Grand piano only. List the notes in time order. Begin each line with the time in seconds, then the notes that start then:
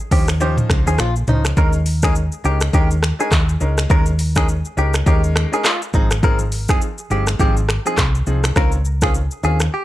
0.11 F3 C#4 D#4 C5
0.40 F3 C#4 D#4 C5
0.86 F3 C#4 D#4 C5
1.28 F3 C#4 D#4 C5
1.57 G#3 C#4 D#4 A#4
2.03 G#3 C#4 D#4 A#4
2.44 G#3 C#4 D#4 A#4
2.73 G#3 C#4 D#4 A#4
3.19 G#3 C#4 D#4 A#4
3.61 G#3 C#4 D#4 A#4
3.90 G#3 C#4 D#4 A#4
4.36 G#3 C#4 D#4 A#4
4.77 G#3 C#4 D#4 A#4
5.06 G#3 C#4 D#4 A#4
5.52 G#3 C#4 D#4 A#4
5.94 F3 C4 D#4 G#4
6.23 F3 C4 D#4 G#4
6.69 F3 C4 D#4 G#4
7.10 F3 C4 D#4 G#4
7.39 F3 C4 D#4 G#4
7.85 F3 C4 D#4 G#4
8.27 F3 C4 D#4 G#4
8.56 D#3 C4 C#4 F4
9.02 D#3 C4 C#4 F4
9.43 D#3 C4 C#4 F4